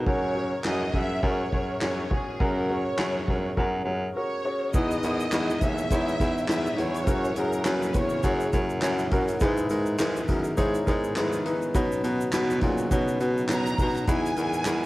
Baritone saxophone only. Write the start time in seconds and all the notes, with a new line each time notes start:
0.06 F#2
0.65 F#2
0.94 F#2
1.23 F#2
1.53 F#2
1.81 F#2
2.40 F#2
2.98 F#2
3.28 F#2
3.57 F#2
3.85 F#2
4.74 E2
5.03 E2
5.33 E2
5.62 D#2
5.91 E2
6.20 E2
6.49 E2
6.78 E2
7.07 F#2
7.36 F#2
7.65 F#2
7.95 E2
8.24 F#2
8.53 F#2
8.82 F#2
9.12 F#2
9.41 G#2
9.70 G#2
9.98 G#2
10.28 F#2
10.58 G#2
10.87 G#2
11.16 G#2
11.74 B2
12.04 B2
12.33 B2
12.62 A#2
12.91 B2
13.20 B2
13.49 B2
13.79 B2
14.07 E2
14.37 E2
14.66 E2